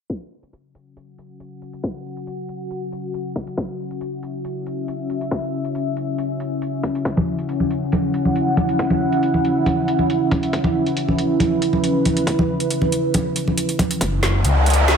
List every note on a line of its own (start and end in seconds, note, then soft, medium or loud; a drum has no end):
0.10 13.97 C#4 medium
0.10 7.01 F#4 medium
0.10 3.56 F#5 medium
0.10 kick loud
0.10 closed hi-hat medium
0.43 closed hi-hat soft
0.53 closed hi-hat medium
0.75 closed hi-hat medium
0.97 closed hi-hat medium
1.18 closed hi-hat medium
1.40 closed hi-hat medium
1.62 closed hi-hat soft
1.73 closed hi-hat medium
1.84 kick loud
1.84 closed hi-hat medium
2.17 closed hi-hat soft
2.27 closed hi-hat medium
2.49 closed hi-hat medium
2.71 closed hi-hat medium
2.92 closed hi-hat medium
3.14 closed hi-hat medium
3.36 kick medium
3.36 closed hi-hat medium
3.47 closed hi-hat medium
3.57 7.04 E5 medium
3.57 kick loud
3.57 closed hi-hat medium
3.91 closed hi-hat soft
4.01 closed hi-hat medium
4.23 closed hi-hat medium
4.45 closed hi-hat medium
4.66 closed hi-hat medium
4.88 closed hi-hat medium
5.10 closed hi-hat soft
5.21 closed hi-hat soft
5.31 kick loud
5.31 closed hi-hat medium
5.65 closed hi-hat soft
5.75 closed hi-hat medium
5.97 closed hi-hat soft
6.18 closed hi-hat medium
6.40 closed hi-hat medium
6.62 closed hi-hat medium
6.83 kick medium
6.83 closed hi-hat soft
6.95 closed hi-hat medium
7.05 13.97 E4 medium
7.05 10.52 F#5 medium
7.05 kick loud
7.05 closed hi-hat medium
7.17 high conga medium
7.39 closed hi-hat soft
7.49 closed hi-hat medium
7.60 high conga medium
7.71 closed hi-hat soft
7.92 closed hi-hat medium
7.92 high conga medium
8.14 closed hi-hat medium
8.25 high conga medium
8.36 closed hi-hat medium
8.57 closed hi-hat soft
8.57 high conga loud
8.69 closed hi-hat soft
8.79 kick loud
8.79 closed hi-hat medium
8.90 high conga medium
9.12 closed hi-hat soft
9.23 closed hi-hat medium
9.34 high conga medium
9.45 closed hi-hat soft
9.66 closed hi-hat medium
9.66 high conga medium
9.88 closed hi-hat medium
9.99 high conga medium
10.10 closed hi-hat medium
10.31 kick medium
10.31 closed hi-hat soft
10.31 high conga medium
10.43 closed hi-hat soft
10.53 14.00 B4 medium
10.53 kick loud
10.53 closed hi-hat medium
10.64 high conga medium
10.86 closed hi-hat soft
10.97 closed hi-hat medium
11.08 high conga medium
11.19 closed hi-hat soft
11.40 closed hi-hat medium
11.40 high conga medium
11.62 closed hi-hat medium
11.73 high conga medium
11.84 closed hi-hat medium
12.05 closed hi-hat soft
12.05 high conga medium
12.17 closed hi-hat soft
12.27 kick loud
12.27 closed hi-hat medium
12.39 high conga medium
12.60 closed hi-hat soft
12.71 closed hi-hat medium
12.82 high conga medium
12.92 closed hi-hat medium
13.14 closed hi-hat medium
13.14 high conga medium
13.36 closed hi-hat medium
13.48 high conga medium
13.58 closed hi-hat medium
13.69 closed hi-hat soft
13.79 kick medium
13.79 closed hi-hat medium
13.79 high conga medium
13.91 closed hi-hat soft
14.01 14.43 F#1 medium
14.01 14.97 C#4 medium
14.01 14.97 F#4 medium
14.01 14.97 F#5 medium
14.01 kick loud
14.01 closed hi-hat medium
14.01 riser medium
14.23 snare medium
14.23 closed hi-hat medium
14.44 14.97 C#2 medium
14.44 closed hi-hat medium
14.66 closed hi-hat soft
14.70 closed hi-hat medium
14.74 closed hi-hat medium
14.88 snare loud
14.88 closed hi-hat medium